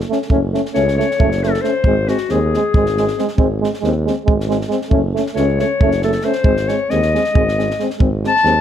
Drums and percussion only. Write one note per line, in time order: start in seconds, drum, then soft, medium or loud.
0.01 snare soft
0.12 snare soft
0.22 snare soft
0.30 kick medium
0.54 snare soft
0.66 snare soft
0.75 snare soft
0.88 snare soft
1.00 snare soft
1.11 snare soft
1.20 kick medium
1.32 snare soft
1.43 snare soft
1.54 snare soft
1.64 snare soft
1.84 kick medium
2.08 snare soft
2.18 snare soft
2.29 snare soft
2.54 snare soft
2.74 kick medium
2.86 snare soft
2.97 snare soft
3.08 snare soft
3.19 snare soft
3.28 snare soft
3.38 kick medium
3.64 snare soft
3.74 snare soft
3.84 snare soft
4.07 snare soft
4.28 kick medium
4.40 snare soft
4.51 snare soft
4.61 snare soft
4.71 snare soft
4.82 snare soft
4.91 kick medium
5.16 snare soft
5.26 snare soft
5.36 snare soft
5.59 snare soft
5.81 kick loud
5.91 snare soft
6.02 snare soft
6.12 snare soft
6.21 snare soft
6.33 snare soft
6.44 kick loud
6.57 snare soft
6.69 snare soft
6.90 snare soft
7.02 snare soft
7.15 snare soft
7.24 snare soft
7.35 kick loud
7.48 snare soft
7.59 snare soft
7.71 snare soft
7.80 snare soft
7.90 snare soft
8.00 kick loud
8.24 snare soft
8.37 snare soft
8.46 snare soft